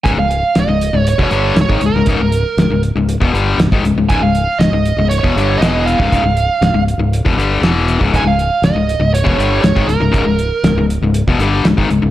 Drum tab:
HH |x-x-x-x-x-x-x-x-|x-x-x-x-x-x-x-x-|x-x-x-x-x-x-x-x-|x-x-x-x-x-x-x-x-|
SD |----o-------o---|----o-------o---|----o-------o---|----o-------o---|
BD |o--------o---o--|o--------o---o--|o--------o-----o|o--------o-----o|

HH |x-x-x-x-x-x-x-x-|x-x-x-x-x-x-x-x-|
SD |----o-------o---|----o-------o---|
BD |o--------o---o--|o--------o---o--|